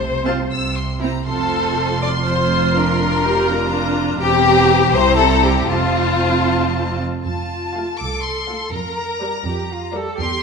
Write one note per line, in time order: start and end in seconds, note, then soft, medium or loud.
0.00 0.38 C2 medium
0.00 0.39 C3 medium
0.00 0.50 C5 medium
0.25 0.37 C4 medium
0.25 0.37 F4 medium
0.25 0.37 A5 soft
0.50 1.13 C2 medium
0.50 1.14 C3 medium
0.50 0.74 E6 medium
0.75 1.01 C6 medium
1.00 1.12 C4 soft
1.00 1.12 E4 soft
1.00 1.26 A#5 soft
1.26 4.16 F1 medium
1.26 4.16 F2 medium
1.26 1.97 C4 medium
1.26 2.00 F4 medium
1.26 1.97 A4 medium
1.26 3.43 C6 medium
2.01 3.46 F4 medium
2.01 2.09 D5 medium
2.27 2.74 C5 medium
2.73 2.96 D4 medium
2.73 3.95 A#4 medium
2.97 3.22 D4 medium
3.23 3.47 G4 medium
3.46 4.20 D4 medium
3.46 4.19 F4 medium
3.46 4.17 A#5 medium
4.18 4.89 E1 medium
4.18 4.89 E2 medium
4.18 4.89 C4 medium
4.18 4.89 G4 loud
4.18 4.89 G4 medium
4.18 4.88 A#5 medium
4.91 5.69 C2 medium
4.91 5.68 C4 medium
4.91 5.68 E4 medium
4.91 5.18 C5 loud
4.91 5.68 A#5 medium
5.16 5.42 A4 medium
5.43 5.69 G4 medium
5.68 7.00 F1 medium
5.68 7.01 F2 medium
5.68 7.01 C4 medium
5.68 6.99 F4 medium
5.68 7.04 F4 medium
5.68 7.01 A5 medium
7.24 7.84 F2 soft
7.24 7.95 F4 soft
7.24 7.95 A5 medium
7.74 7.93 A3 soft
7.74 7.92 F4 soft
7.74 7.93 F4 soft
7.74 7.92 F5 soft
7.97 8.58 C2 soft
7.97 8.74 A4 soft
7.97 8.23 D6 medium
8.23 8.73 C6 medium
8.49 8.68 A3 soft
8.49 8.67 F4 soft
8.49 8.68 F4 soft
8.49 8.67 F5 soft
8.72 9.31 F2 soft
8.72 9.46 A#4 soft
8.72 9.91 A#5 medium
9.22 9.40 G3 soft
9.22 9.40 G4 medium
9.22 9.40 A#4 soft
9.22 9.40 D5 soft
9.45 10.03 F2 medium
9.45 9.70 G4 soft
9.71 9.95 F4 soft
9.93 10.13 G3 medium
9.93 10.13 G4 medium
9.93 10.19 A4 medium
9.93 10.12 A#4 medium
9.93 10.12 D5 medium
10.18 10.43 E2 medium
10.18 10.43 G4 medium
10.18 10.41 C6 medium